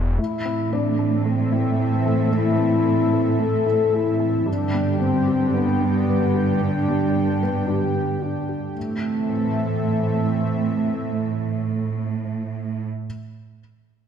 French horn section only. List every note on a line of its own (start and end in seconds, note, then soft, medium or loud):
0.19 0.68 E4 medium
0.72 1.26 D4 medium
1.24 2.30 C4 medium
2.33 3.40 E4 medium
3.40 3.93 A4 medium
3.94 4.47 E4 medium
4.47 5.01 D4 medium
5.00 5.53 C4 medium
5.54 6.61 B3 medium
6.61 7.66 D4 medium
7.69 8.22 G4 medium
8.23 8.59 D4 soft
8.75 12.82 A3 soft